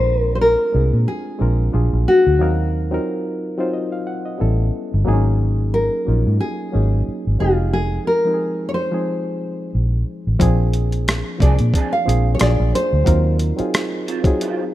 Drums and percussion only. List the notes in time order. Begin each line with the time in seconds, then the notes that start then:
10.40 kick, closed hi-hat
10.73 closed hi-hat
10.92 closed hi-hat
11.08 cross-stick, closed hi-hat
11.40 kick, closed hi-hat
11.59 closed hi-hat
11.74 kick, closed hi-hat
12.09 closed hi-hat
12.39 cross-stick, closed hi-hat
12.75 closed hi-hat
13.06 kick, closed hi-hat
13.39 closed hi-hat
13.59 closed hi-hat
13.74 cross-stick, closed hi-hat
14.08 closed hi-hat
14.24 kick, closed hi-hat
14.41 closed hi-hat